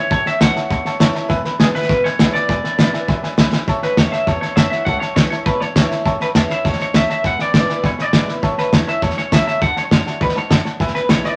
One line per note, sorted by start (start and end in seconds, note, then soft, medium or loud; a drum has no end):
0.00 0.12 C#4 medium
0.00 0.11 E4 medium
0.00 0.11 C#5 medium
0.10 0.21 A1 loud
0.10 0.68 A2 loud
0.10 0.20 C#5 loud
0.10 0.26 C#5 loud
0.10 0.20 E5 medium
0.10 0.20 A5 loud
0.10 kick loud
0.10 snare soft
0.25 0.35 C#5 medium
0.25 0.35 E5 medium
0.25 0.41 E5 loud
0.25 0.36 A5 medium
0.25 muted upright bass stroke medium
0.25 snare soft
0.40 0.51 C#2 medium
0.40 0.55 E3 medium
0.40 0.56 A3 medium
0.40 0.56 C#4 medium
0.40 0.55 E4 medium
0.40 0.50 C#5 medium
0.40 0.50 E5 medium
0.40 1.12 F#5 loud
0.40 0.50 A5 loud
0.40 snare loud
0.40 hi-hat pedal medium
0.55 0.72 C#4 medium
0.55 0.71 E4 medium
0.55 0.65 C#5 medium
0.55 0.65 E5 medium
0.55 0.65 A5 medium
0.55 muted upright bass stroke medium
0.55 snare soft
0.70 0.81 D2 medium
0.70 1.28 E2 loud
0.70 0.80 C#5 medium
0.70 0.80 E5 medium
0.70 0.80 A5 medium
0.70 kick loud
0.70 snare soft
0.84 0.95 C#5 loud
0.84 0.95 E5 medium
0.84 0.95 A5 loud
0.84 muted upright bass stroke medium
0.84 snare soft
1.00 1.10 F#1 medium
1.00 1.15 E3 medium
1.00 1.15 A3 medium
1.00 1.16 C#4 medium
1.00 1.14 E4 medium
1.00 1.09 C#5 loud
1.00 1.10 E5 loud
1.00 1.10 A5 loud
1.00 snare loud
1.00 hi-hat pedal medium
1.14 1.31 C#4 medium
1.14 1.30 E4 medium
1.14 1.24 C#5 loud
1.14 1.24 E5 medium
1.14 1.25 A5 loud
1.14 muted upright bass stroke medium
1.14 snare soft
1.29 1.40 E1 loud
1.29 1.87 E2 loud
1.29 1.38 B4 loud
1.29 1.39 E5 loud
1.29 1.39 G#5 loud
1.29 kick loud
1.29 snare soft
1.45 1.54 B4 loud
1.45 1.54 E5 medium
1.45 1.54 B5 loud
1.45 muted upright bass stroke medium
1.45 snare soft
1.59 1.70 G#1 loud
1.59 1.74 D3 medium
1.59 1.75 G#3 medium
1.59 1.75 B3 loud
1.59 1.74 E4 medium
1.59 1.65 G#4 medium
1.59 1.69 B4 medium
1.59 1.69 E5 medium
1.59 1.69 G#5 loud
1.59 snare loud
1.59 hi-hat pedal loud
1.74 1.90 B3 medium
1.74 1.89 E4 medium
1.74 1.83 B4 medium
1.74 2.06 B4 loud
1.74 1.84 E5 medium
1.74 1.84 G#5 medium
1.74 muted upright bass stroke medium
1.74 snare soft
1.82 snare soft
1.89 2.00 A1 loud
1.89 2.46 B2 loud
1.89 1.98 B4 medium
1.89 1.99 E5 medium
1.89 1.99 B5 medium
1.89 kick loud
1.89 snare soft
2.04 2.14 B4 medium
2.04 2.32 C#5 loud
2.04 2.14 E5 medium
2.04 2.14 G#5 medium
2.04 muted upright bass stroke medium
2.04 snare soft
2.19 2.30 C#2 medium
2.19 2.34 D3 medium
2.19 2.34 G#3 medium
2.19 2.34 B3 medium
2.19 2.33 E4 loud
2.19 2.28 B4 loud
2.19 2.29 E5 medium
2.19 2.29 G#5 loud
2.19 snare loud
2.19 hi-hat pedal medium
2.33 2.50 B3 medium
2.33 2.49 E4 medium
2.33 2.43 B4 medium
2.33 3.34 D5 loud
2.33 2.43 E5 medium
2.33 2.44 G#5 medium
2.33 muted upright bass stroke medium
2.33 snare soft
2.48 2.59 E1 loud
2.48 3.06 E2 medium
2.48 2.58 B4 loud
2.48 2.58 E5 medium
2.48 2.59 G#5 loud
2.48 kick loud
2.48 snare soft
2.63 2.73 B4 medium
2.63 2.73 E5 medium
2.63 2.73 G#5 medium
2.63 muted upright bass stroke medium
2.63 snare soft
2.78 2.89 G#1 loud
2.78 2.93 D3 medium
2.78 2.93 G#3 medium
2.78 2.94 B3 loud
2.78 2.92 E4 loud
2.78 2.87 B4 loud
2.78 2.88 E5 medium
2.78 2.88 B5 loud
2.78 snare loud
2.78 hi-hat pedal medium
2.93 3.09 B3 medium
2.93 3.08 E4 medium
2.93 3.03 B4 medium
2.93 3.03 E5 medium
2.93 3.03 G#5 medium
2.93 muted upright bass stroke medium
2.93 snare soft
3.08 3.19 A1 loud
3.08 3.37 F#2 medium
3.08 3.17 B4 medium
3.08 3.18 E5 medium
3.08 3.18 G#5 loud
3.08 kick loud
3.08 snare soft
3.23 3.32 B4 medium
3.23 3.33 E5 medium
3.23 3.33 G#5 loud
3.23 muted upright bass stroke medium
3.23 snare soft
3.37 3.48 C#2 medium
3.37 3.67 G#2 medium
3.37 3.47 B4 loud
3.37 3.47 E5 loud
3.37 3.48 G#5 loud
3.37 snare loud
3.37 hi-hat pedal medium
3.53 3.62 B4 medium
3.53 3.62 E5 medium
3.53 3.62 G#5 loud
3.53 muted upright bass stroke medium
3.53 snare medium
3.68 3.80 A1 medium
3.68 4.25 A2 medium
3.68 3.77 C#5 loud
3.68 3.77 E5 loud
3.68 3.78 A5 loud
3.68 kick loud
3.68 snare soft
3.82 3.97 B4 medium
3.82 3.92 C#5 medium
3.82 3.92 E5 medium
3.82 3.92 A5 medium
3.82 muted upright bass stroke medium
3.82 snare soft
3.97 4.10 E2 medium
3.97 4.26 E3 medium
3.97 4.26 A3 medium
3.97 4.27 C#4 medium
3.97 4.27 E4 medium
3.97 4.07 C#5 medium
3.97 4.12 C#5 medium
3.97 4.07 E5 medium
3.97 4.07 A5 medium
3.97 kick medium
3.97 snare loud
3.97 hi-hat pedal medium
4.12 4.21 C#5 medium
4.12 4.28 E5 medium
4.12 4.22 E5 medium
4.12 4.22 A5 medium
4.12 muted upright bass stroke medium
4.12 snare soft
4.27 4.40 E2 medium
4.27 4.85 E2 medium
4.27 4.36 C#5 loud
4.27 4.40 C#5 medium
4.27 4.37 E5 medium
4.27 4.37 A5 loud
4.27 kick loud
4.27 snare soft
4.41 4.56 C#5 medium
4.41 4.51 E5 medium
4.41 4.51 A5 medium
4.41 muted upright bass stroke medium
4.41 snare soft
4.56 4.69 F#2 medium
4.56 4.72 E3 medium
4.56 4.73 A3 medium
4.56 4.73 C#4 medium
4.56 4.66 C#5 medium
4.56 4.69 E5 loud
4.56 4.66 E5 medium
4.56 4.66 A5 loud
4.56 kick medium
4.56 snare loud
4.56 hi-hat pedal medium
4.60 4.71 E4 medium
4.70 4.87 E4 medium
4.70 4.81 C#5 medium
4.70 4.85 E5 loud
4.70 4.81 F#5 medium
4.70 muted upright bass stroke medium
4.70 snare soft
4.75 4.88 C#4 medium
4.85 4.99 C#2 loud
4.85 5.44 A2 medium
4.85 4.96 C#5 loud
4.85 4.97 E5 medium
4.85 5.00 F#5 loud
4.85 4.97 A5 loud
4.85 kick loud
4.85 snare soft
5.00 5.15 C#5 loud
5.00 5.11 C#5 medium
5.00 5.11 E5 medium
5.00 5.11 A5 medium
5.00 muted upright bass stroke medium
5.00 snare soft
5.16 5.29 C#2 medium
5.16 5.31 E3 medium
5.16 5.32 A3 medium
5.16 5.32 C#4 medium
5.16 5.31 E4 loud
5.16 5.21 C#5 loud
5.16 5.26 E5 medium
5.16 kick medium
5.16 snare loud
5.16 hi-hat pedal medium
5.30 5.47 C#4 medium
5.30 5.46 E4 medium
5.30 5.35 C#5 medium
5.30 5.41 C#5 medium
5.30 5.41 E5 medium
5.30 5.41 A5 medium
5.30 muted upright bass stroke medium
5.30 snare soft
5.46 5.58 A1 loud
5.46 6.03 E2 medium
5.46 5.60 B4 medium
5.46 5.55 C#5 loud
5.46 5.55 E5 medium
5.46 5.56 A5 loud
5.46 kick loud
5.46 snare soft
5.60 5.91 C#5 medium
5.60 5.70 C#5 medium
5.60 5.71 E5 medium
5.60 5.71 A5 medium
5.60 muted upright bass stroke medium
5.60 snare soft
5.76 5.88 D2 medium
5.76 5.91 E3 medium
5.76 5.91 A3 medium
5.76 5.92 C#4 medium
5.76 5.90 E4 loud
5.76 5.85 C#5 loud
5.76 5.85 E5 medium
5.76 5.86 A5 loud
5.76 kick medium
5.76 snare loud
5.76 hi-hat pedal medium
5.90 6.07 C#4 medium
5.90 6.06 E4 medium
5.90 6.00 C#5 medium
5.90 6.00 E5 medium
5.90 6.00 A5 medium
5.90 muted upright bass stroke medium
5.90 snare soft
6.05 6.18 A1 loud
6.05 6.63 A2 loud
6.05 6.14 C#5 loud
6.05 6.15 E5 loud
6.05 6.15 A5 loud
6.05 kick loud
6.05 snare soft
6.20 6.27 B4 medium
6.20 6.29 C#5 medium
6.20 6.30 E5 medium
6.20 6.30 A5 medium
6.20 muted upright bass stroke medium
6.20 snare soft
6.34 6.47 E2 loud
6.34 6.50 E3 medium
6.34 6.50 A3 medium
6.34 6.51 C#4 medium
6.34 6.50 E4 medium
6.34 6.44 C#5 medium
6.34 6.51 C#5 medium
6.34 6.44 E5 medium
6.34 6.44 A5 medium
6.34 kick medium
6.34 snare loud
6.34 hi-hat pedal medium
6.49 6.66 C#4 medium
6.49 6.65 E4 medium
6.49 6.59 C#5 medium
6.49 6.59 E5 medium
6.49 6.67 E5 medium
6.49 6.59 B5 medium
6.49 muted upright bass stroke medium
6.49 snare soft
6.64 6.77 E2 medium
6.64 6.94 G#2 medium
6.64 6.74 C#5 medium
6.64 6.81 C#5 medium
6.64 6.74 E5 medium
6.64 6.74 A5 loud
6.64 kick loud
6.64 snare soft
6.72 snare soft
6.78 6.88 C#5 medium
6.78 6.88 E5 medium
6.78 6.89 A5 medium
6.78 muted upright bass stroke medium
6.78 snare soft
6.82 6.96 C#5 medium
6.93 7.07 D2 medium
6.93 7.24 F#2 medium
6.93 7.03 C#5 medium
6.93 7.03 E5 medium
6.93 7.10 E5 loud
6.93 7.04 A5 loud
6.93 kick medium
6.93 snare loud
6.93 hi-hat pedal medium
7.09 7.18 C#5 medium
7.09 7.18 E5 medium
7.09 7.24 E5 loud
7.09 7.19 A5 medium
7.09 muted upright bass stroke medium
7.09 snare soft
7.23 7.36 E1 medium
7.23 7.81 E2 medium
7.23 7.33 B4 medium
7.23 7.33 E5 medium
7.23 7.40 F#5 loud
7.23 7.34 G#5 loud
7.23 kick loud
7.23 snare soft
7.38 7.48 B4 medium
7.38 7.54 D5 medium
7.38 7.48 E5 medium
7.38 7.48 G#5 medium
7.38 muted upright bass stroke medium
7.38 snare soft
7.53 7.66 G#1 loud
7.53 7.69 D3 medium
7.53 7.69 G#3 medium
7.53 7.70 B3 medium
7.53 7.68 E4 medium
7.53 7.63 B4 medium
7.53 7.86 D5 loud
7.53 7.63 E5 medium
7.53 7.63 G#5 medium
7.53 kick medium
7.53 snare loud
7.53 hi-hat pedal medium
7.68 7.85 B3 medium
7.68 7.84 E4 medium
7.68 7.78 B4 medium
7.68 7.78 E5 medium
7.68 7.78 G#5 medium
7.68 muted upright bass stroke medium
7.68 snare soft
7.83 7.96 E1 medium
7.83 8.41 B2 medium
7.83 7.92 B4 medium
7.83 8.02 C#5 medium
7.83 7.93 E5 medium
7.83 7.93 G#5 loud
7.83 kick loud
7.83 snare soft
7.98 8.07 B4 medium
7.98 8.30 D5 medium
7.98 8.08 E5 medium
7.98 8.08 G#5 medium
7.98 muted upright bass stroke medium
7.98 snare soft
8.13 8.25 G#1 medium
8.13 8.28 D3 medium
8.13 8.28 G#3 medium
8.13 8.29 B3 medium
8.13 8.28 E4 loud
8.13 8.22 B4 loud
8.13 8.23 E5 medium
8.13 8.23 G#5 loud
8.13 kick medium
8.13 snare loud
8.13 hi-hat pedal medium
8.27 8.43 E4 medium
8.27 8.37 B4 medium
8.27 8.37 E5 medium
8.27 8.37 B5 medium
8.27 muted upright bass stroke medium
8.27 snare soft
8.31 8.44 B3 medium
8.42 8.55 A1 medium
8.42 9.00 A2 medium
8.42 8.52 C#5 loud
8.42 8.52 E5 loud
8.42 8.52 A5 loud
8.42 kick loud
8.42 snare soft
8.57 8.74 B4 medium
8.57 8.67 C#5 medium
8.57 8.67 E5 medium
8.57 8.67 A5 medium
8.57 muted upright bass stroke medium
8.57 snare soft
8.72 8.85 E2 medium
8.72 8.87 E3 medium
8.72 8.87 A3 medium
8.72 8.88 C#4 medium
8.72 8.86 E4 medium
8.72 8.81 C#5 medium
8.72 8.88 C#5 medium
8.72 8.82 E5 medium
8.72 8.82 A5 medium
8.72 kick medium
8.72 snare loud
8.72 hi-hat pedal medium
8.87 9.03 C#4 medium
8.87 9.02 E4 medium
8.87 8.96 C#5 medium
8.87 8.96 E5 medium
8.87 9.02 E5 loud
8.87 8.97 A5 medium
8.87 muted upright bass stroke medium
8.87 snare soft
9.02 9.15 E2 medium
9.02 9.31 B2 medium
9.02 9.11 C#5 loud
9.02 9.17 C#5 medium
9.02 9.11 E5 medium
9.02 9.12 A5 loud
9.02 kick loud
9.02 snare soft
9.10 snare soft
9.17 9.26 C#5 medium
9.17 9.33 C#5 medium
9.17 9.26 E5 medium
9.17 9.27 G#5 medium
9.17 muted upright bass stroke medium
9.17 snare soft
9.31 9.44 C#2 medium
9.31 9.61 C#3 medium
9.31 9.41 C#5 medium
9.31 9.41 E5 medium
9.31 9.46 E5 loud
9.31 9.41 A5 loud
9.31 kick medium
9.31 snare loud
9.31 hi-hat pedal medium
9.46 9.55 C#5 medium
9.46 9.56 E5 medium
9.46 9.61 E5 loud
9.46 9.56 A5 medium
9.46 muted upright bass stroke medium
9.46 snare soft
9.60 9.74 D2 loud
9.60 9.90 D3 loud
9.60 9.70 D5 loud
9.60 9.70 F#5 medium
9.60 9.77 F#5 loud
9.60 9.71 A5 loud
9.60 kick loud
9.60 snare soft
9.75 9.83 C#5 medium
9.75 9.85 D5 medium
9.75 9.85 F#5 medium
9.75 9.85 A5 medium
9.75 muted upright bass stroke medium
9.75 snare soft
9.91 10.04 F#2 medium
9.91 10.06 D3 medium
9.91 10.06 A3 medium
9.91 10.06 D4 medium
9.91 10.05 F#4 medium
9.91 10.19 C#5 medium
9.91 10.00 D5 medium
9.91 10.01 F#5 medium
9.91 10.01 A5 medium
9.91 kick medium
9.91 snare loud
9.91 hi-hat pedal medium
10.06 10.22 D4 medium
10.06 10.20 F#4 medium
10.06 10.15 D5 medium
10.06 10.15 F#5 medium
10.06 10.16 A5 medium
10.06 muted upright bass stroke medium
10.06 snare soft
10.21 10.33 D2 medium
10.21 10.50 G#2 medium
10.21 10.37 B4 medium
10.21 10.30 D5 loud
10.21 10.30 F#5 medium
10.21 10.30 B5 loud
10.21 kick loud
10.21 snare soft
10.29 snare soft
10.35 10.65 C#5 medium
10.35 10.45 D5 medium
10.35 10.45 F#5 medium
10.35 10.45 A5 medium
10.35 muted upright bass stroke medium
10.35 snare soft
10.49 10.63 F#2 medium
10.49 10.79 F#2 medium
10.49 10.59 D5 loud
10.49 10.59 F#5 medium
10.49 10.60 A5 loud
10.49 kick medium
10.49 snare loud
10.49 hi-hat pedal medium
10.65 10.74 D5 medium
10.65 10.74 F#5 medium
10.65 10.75 A5 medium
10.65 muted upright bass stroke medium
10.65 snare soft
10.80 10.92 E1 loud
10.80 11.36 E2 loud
10.80 10.89 B4 loud
10.80 10.89 E5 loud
10.80 10.89 G#5 loud
10.80 kick loud
10.80 snare soft
10.87 snare soft
10.93 11.03 B4 medium
10.93 11.10 B4 loud
10.93 11.04 E5 medium
10.93 11.04 G#5 medium
10.93 muted upright bass stroke medium
10.93 snare soft
11.09 11.22 B1 loud
11.09 11.24 D3 medium
11.09 11.25 G#3 medium
11.09 11.25 B3 medium
11.09 11.25 E4 medium
11.09 11.18 B4 medium
11.09 11.25 C#5 loud
11.09 11.19 E5 medium
11.09 11.19 G#5 medium
11.09 kick medium
11.09 snare loud
11.09 hi-hat pedal medium
11.24 11.36 B3 medium
11.24 11.36 E4 medium
11.24 11.33 B4 medium
11.24 11.36 D5 loud
11.24 11.33 E5 medium
11.24 11.34 G#5 medium
11.24 muted upright bass stroke medium
11.24 snare soft